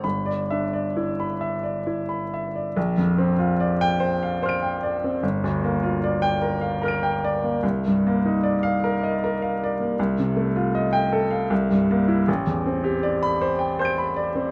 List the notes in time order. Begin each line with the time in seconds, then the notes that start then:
0.04 G1 B5
0.26 D5
0.51 D4 E5
0.73 D5
0.97 E4
1.20 B5
1.41 E5
1.63 D5
1.87 E4
2.09 B5
2.34 E5
2.55 D5
2.77 A#1
2.98 F2
3.18 C4
3.39 F4
3.60 D5
3.81 G5
4.00 C5
4.23 F5
4.43 C5 C6 F6
4.49 D7
4.63 G5
4.83 D5
5.04 C4
5.23 G1
5.44 D2
5.64 A#3
5.83 F4
6.04 D5
6.22 G5
6.42 A#4
6.61 F5
6.82 A#4 A#5 F6
6.88 D7
7.03 G5
7.24 D5
7.44 A#3
7.63 C2
7.87 G2
8.07 A#3
8.26 D#4
8.43 D5
8.63 F5
8.84 A#4
9.03 D#5
9.24 A#4
9.42 F5
9.64 D5
9.80 A#3
9.99 C2
10.19 C3
10.37 A3
10.56 F4
10.75 D#5
10.93 G5
11.13 A4
11.31 F5
11.50 C2
11.71 G2
11.91 A#3
12.08 E4
12.28 A1
12.47 E2
12.66 C4
12.84 G4
13.03 D5
13.23 B5
13.41 C5
13.59 G5
13.79 C5 C6 G6
13.85 D7
13.98 B5
14.16 D5
14.35 C4